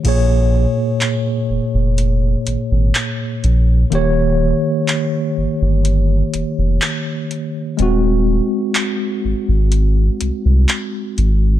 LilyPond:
<<
  \new Staff \with { instrumentName = "Tine electric piano" } { \time 4/4 \key bes \minor \tempo 4 = 62 <bes, bes aes' des''>1 | <ees bes g' des''>1 | <aes c' ges'>1 | }
  \new Staff \with { instrumentName = "Sub bass" } { \clef bass \time 4/4 \key bes \minor bes,,8. r8. f,,16 f,,8. aes,,16 aes,,16 r8 bes,,8 | ees,,8. r8. g,,16 g,,8. f,,16 f,,16 r4 | ees,,8. r8. aes,,16 aes,,8. c,16 c,16 r8 aes,,8 | }
  \new DrumStaff \with { instrumentName = "Drums" } \drummode { \time 4/4 <cymc hh>4 <hc hh>4 hh8 hh8 <hc hh>8 hh8 | hh4 <hc hh>4 hh8 hh8 <hc hh>8 hh8 | hh4 <hc hh>4 hh8 hh8 <hc hh>8 hh8 | }
>>